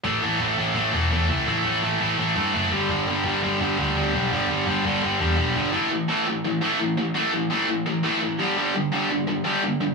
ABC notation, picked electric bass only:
X:1
M:4/4
L:1/8
Q:1/4=169
K:Glyd
V:1 name="Picked electric bass" clef=bass
A,,, A,,, A,,, A,,, A,,, E,,, E,, C,, | A,,, A,,, A,,, A,,, A,,, G,, F,,, G,,, | G,,, G,,, G,,, G,,, G,,, D,, D,, B,,, | G,,, G,,, G,,, G,,, G,,, E,, B,,, G,,, |
z8 | z8 | z8 |]